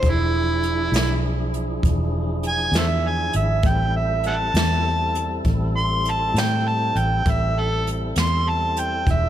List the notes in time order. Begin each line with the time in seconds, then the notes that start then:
Already playing: C5
0.01 E1 F3 D4 E4 G#4, kick, closed hi-hat
0.10 E4
0.63 closed hi-hat
0.92 B1, snare, closed hi-hat
1.54 closed hi-hat
1.83 E1, kick, closed hi-hat
2.43 closed hi-hat
2.48 G#5
2.72 E2, snare, closed hi-hat
2.78 A4 C5 E5
3.08 G#5
3.33 G#1 E5, closed hi-hat
3.63 A1 G3 C4 E4 A4, kick, closed hi-hat
3.67 G5
3.96 E5
4.24 E5 F#5 A5, closed hi-hat
4.54 E2, snare, closed hi-hat
5.15 closed hi-hat
5.45 A1, kick, closed hi-hat
5.78 C6
6.05 closed hi-hat
6.11 A5
6.34 A2, snare, closed hi-hat
6.40 G5
6.68 A5
6.95 A1 G5, closed hi-hat
7.26 A1 G3 C4 E4 A4, kick, closed hi-hat
7.30 E5
7.60 A4
7.87 closed hi-hat
8.16 E2, snare, closed hi-hat
8.22 C6
8.49 A5
8.77 G5, closed hi-hat
9.07 E1 F3 D4 E4 G#4, kick, closed hi-hat
9.11 E5